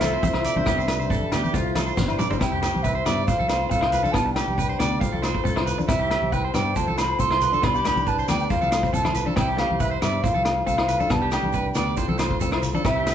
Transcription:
Already playing: C2 C4 F4 A4 C5 E5
0.01 A3 A4, cross-stick, closed hi-hat, high conga, low agogo, shekere
0.13 C5
0.23 C2 C4 C5, kick, high conga, shekere
0.33 E4, cross-stick, low agogo
0.44 D5, closed hi-hat, low conga, shekere
0.56 C2 D4 C5, high conga
0.66 C2 B3 D4 G4 B4, kick, cross-stick, low agogo, shekere
0.78 C5, shekere
0.88 A3 B4, cross-stick, closed hi-hat, low agogo, shekere
1.00 C5, low conga, shekere
1.10 A4, kick, shekere
1.23 high conga
1.32 D2 B3 G4, cross-stick, closed hi-hat, low conga, low agogo, shekere
1.44 G4, high conga, shekere
1.54 C2 F4 A4 C5, kick, shekere
1.75 A3 A4, cross-stick, closed hi-hat, high conga, low agogo, shekere
1.86 C5
1.97 G1 B3 D4 G4 B4 C5, kick, snare, high conga, shekere
2.08 E4, low agogo, shekere
2.19 D5, mid tom, low conga, shekere
2.30 G1 D4 C5, floor tom, high conga, shekere
2.40 C2 C4 E4 G4 C5 G5, kick, cross-stick, low agogo, shekere
2.52 G4
2.62 A3 G4, cross-stick, closed hi-hat, low agogo, shekere
2.75 C2, high conga
2.83 B4 E5, kick, shekere
2.95 C5
3.06 G2 B3 D5, cross-stick, closed hi-hat, low conga, low agogo, shekere
3.26 C2 F4 A4 C5 F5, kick, shekere
3.39 C2 A4, high conga
3.48 A3 C5, cross-stick, closed hi-hat, low agogo, shekere
3.69 C2 C4 A4 F5, kick, shekere
3.81 E4 C5, cross-stick, low agogo
3.92 B4, closed hi-hat, low conga, shekere
4.03 D4 A4, high conga, shekere
4.12 C2 B3 F4 A5, kick, cross-stick, low agogo
4.16 D4 G4 B4, shekere
4.26 muted clean electric guitar stroke
4.34 A3 G4 G5, cross-stick, closed hi-hat, low agogo, shekere
4.48 C2, high conga
4.58 B4, kick, shekere
4.69 C5
4.79 D2 B3 D5, cross-stick, closed hi-hat, low conga, low agogo, shekere
5.01 C2 F4 A4 C5 F5, kick, shekere
5.12 C2 A4, high conga
5.23 A3 C5, cross-stick, closed hi-hat, low agogo, shekere
5.35 kick
5.44 C2 C4 A4, kick, shekere
5.56 E4 C5, cross-stick, low agogo
5.66 B4, closed hi-hat, low conga, shekere
5.78 D4, muted clean electric guitar stroke, high conga, shekere
5.88 C2 C4 E4 G4 C5 E5, kick, cross-stick, low agogo, shekere
5.99 G4
6.11 A3 G4, cross-stick, closed hi-hat, low agogo
6.22 C2, high conga
6.32 B4 G5, kick, shekere
6.45 C5
6.54 G2 B3 D5 G5, cross-stick, closed hi-hat, low conga, low agogo, shekere
6.76 C2 F4 A4 C5 A5, kick, shekere
6.88 C2 A4, high conga
6.98 A3 C5 B5, cross-stick, closed hi-hat, low agogo, shekere
7.19 C2 C4 A4 C6, kick, shekere
7.31 E4 C5, cross-stick, low agogo
7.41 B4, closed hi-hat, low conga, shekere
7.52 D4 A4, high conga, shekere
7.62 C2 B3 D4 F4 G4 B4 B5, kick, cross-stick, low agogo, shekere
7.75 G4, shekere
7.85 A3 G4, cross-stick, closed hi-hat, low conga, low agogo, shekere
7.96 C2, high conga, shekere
8.07 B4 A5, kick, shekere
8.19 C5, shekere
8.28 D2 B3 D5 G5, cross-stick, closed hi-hat, high conga, low conga, low agogo, shekere
8.39 G5, shekere
8.50 C2 F4 A4 C5 F5, kick, low conga, shekere
8.62 C2 A4, high conga, shekere
8.72 A3 C5, cross-stick, closed hi-hat, low agogo, shekere
8.83 kick, shekere
8.93 C2 C4 A4 A5, kick, shekere
9.04 E4 C5, cross-stick, high conga, low agogo, shekere
9.14 B4, closed hi-hat, low conga, shekere
9.26 D4 A4, high conga
9.36 C2 C4 E4 G4 G5, kick, cross-stick, low agogo, shekere
9.48 G4
9.57 A3 G4 F5, cross-stick, closed hi-hat, low agogo
9.70 C2, high conga
9.80 B4 E5, kick, shekere
9.91 C5
10.02 G2 B3 D5 E5, cross-stick, closed hi-hat, low conga, low agogo, shekere
10.23 C2 F4 A4 C5 F5, kick, shekere
10.34 C2 A4, high conga
10.45 A3, muted clean electric guitar stroke, cross-stick, closed hi-hat, low agogo
10.66 C2 C4 A4 F5, kick, shekere
10.78 E4 C5, cross-stick, low agogo
10.88 B4, closed hi-hat, low conga, shekere
11.00 D4 A4, high conga, shekere
11.10 C2 B3 D4 G4 B4 A5, muted clean electric guitar stroke, kick, cross-stick, low agogo, shekere
11.22 G4
11.32 A3 G4 G5, cross-stick, closed hi-hat, low agogo, shekere
11.43 C2, high conga
11.53 B4, kick, shekere
11.75 D2 B3 D5, cross-stick, closed hi-hat, low conga, low agogo, shekere
11.97 C2 F4 A4 C5, kick, shekere
12.08 C2 A4, high conga
12.19 A3 C5, cross-stick, closed hi-hat, low agogo, shekere
12.31 kick
12.41 C2 C4 A4, kick, shekere
12.52 E4 C5, cross-stick, low agogo
12.63 muted clean electric guitar stroke, closed hi-hat, low conga, shekere
12.74 D4 A4, high conga
12.84 C2 C4 E4 G4 C5 E5, kick, cross-stick, low agogo, shekere
12.96 G4
13.07 A3 G4, cross-stick, closed hi-hat, low agogo, shekere

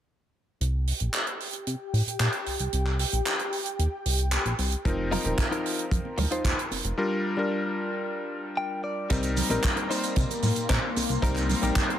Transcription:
0.61 C2 G4 G5, closed hi-hat
0.87 open hi-hat
1.00 A#1, closed hi-hat
1.13 clap, closed hi-hat
1.27 closed hi-hat
1.40 open hi-hat
1.53 closed hi-hat
1.67 C3, closed hi-hat
1.93 A2, open hi-hat
2.06 A#2, closed hi-hat
2.19 A#2, clap, closed hi-hat
2.32 closed hi-hat
2.46 C2, open hi-hat
2.59 C2, closed hi-hat
2.73 C2, closed hi-hat
2.86 clap
2.99 open hi-hat
3.13 A#1, closed hi-hat
3.26 clap, closed hi-hat
3.39 closed hi-hat
3.53 open hi-hat
3.66 closed hi-hat
3.79 D#2, closed hi-hat
4.06 C2, open hi-hat
4.18 closed hi-hat
4.31 clap, closed hi-hat
4.45 A#1, closed hi-hat
4.58 C2, open hi-hat
4.72 closed hi-hat
4.85 F1 F3 C4 D#4 A#4, kick, closed hi-hat
5.11 D#4 F4 A#4, open hi-hat, low conga
5.24 D#1 F3 C4 D#4 A#4, closed hi-hat, high conga
5.38 kick, clap, closed hi-hat
5.51 D#4 F4 A#4, closed hi-hat
5.66 open hi-hat
5.79 closed hi-hat
5.91 F2, kick, closed hi-hat
6.05 high conga
6.17 D2, muted clean electric guitar stroke, open hi-hat, low conga
6.31 D#2 D#4 F4 C5, closed hi-hat
6.44 D#2, kick, clap, closed hi-hat
6.59 closed hi-hat
6.71 F1, open hi-hat, high conga
6.84 F1, muted clean electric guitar stroke, closed hi-hat
6.97 G3 D4 F4 A#4
7.37 G3 D4 F4 A#4
8.57 G5
8.84 D5
9.10 C2 G3 A#3 C4 D#4 A#4 C6, kick, closed hi-hat, shaker
9.23 closed hi-hat, shaker
9.37 open hi-hat, low conga, shaker
9.49 A#1 G3 C4 D#4 A#4, closed hi-hat, high conga, shaker
9.63 kick, clap, closed hi-hat, shaker
9.76 muted clean electric guitar stroke, closed hi-hat
9.89 C4 D#4 C5, open hi-hat, shaker
10.03 closed hi-hat, shaker
10.16 C3, kick, closed hi-hat, shaker
10.30 closed hi-hat, high conga, shaker
10.42 A2, open hi-hat, low conga, shaker
10.56 A#2, closed hi-hat, shaker
10.69 A#2 C4 D#4 A#4, kick, clap, closed hi-hat, shaker
10.96 C2, open hi-hat, high conga, shaker
11.09 C2, muted clean electric guitar stroke, closed hi-hat, shaker
11.22 C2 G3 C4 D#4 A#4, kick, closed hi-hat, shaker
11.35 clap, closed hi-hat, shaker
11.49 open hi-hat, low conga, shaker
11.62 A#1 G3 C4 D#4 G4 A#4, closed hi-hat, high conga, shaker
11.76 kick, clap, closed hi-hat, shaker
11.89 muted clean electric guitar stroke, closed hi-hat

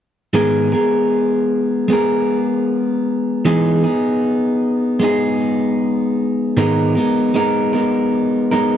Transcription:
0.33 G#2 D#3 G#3 B3 G#4 A#4
0.72 G#3 B3 G#4 A#4
1.88 G#3 B3 G#4
1.93 A#4
3.45 E3 G#3 B3 D#4 G#4
3.84 B3 D#4 G#4
5.00 G#3 B3 D#4
5.04 G#4
6.57 G#2 D#3 G#3 B3 D#4 A#4
6.95 G#3 B3 D#4 A#4
7.34 G#3 B3 D#4 A#4
7.73 G#3 B3 D#4 A#4
8.51 G#3 B3 D#4 A#4

